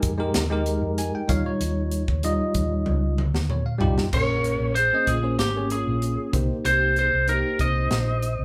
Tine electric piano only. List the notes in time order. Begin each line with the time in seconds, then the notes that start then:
Already playing: G#3 D#4 G4 A#4 G#5
0.18 G#3 D#4 G4 A#4
0.50 G#3 D#4 G4 A#4
0.98 G#5
1.15 G5
1.28 G3 D#4 F4 C#5 F5
1.46 C#5
2.24 G3 D#4 F4 D#5
3.51 C#5
3.66 F5
3.79 G3 D#4 F4 G4 G5
4.13 A#3 C#4 G#4 C#5
4.93 A#3 C#4 G#4 D#5
5.23 A#3 C#4 G#4 C5
5.55 A#3 C#4 G#4 C#5
6.33 A#3 D#4 G4 C5
7.28 A#3 D#4 G4 C5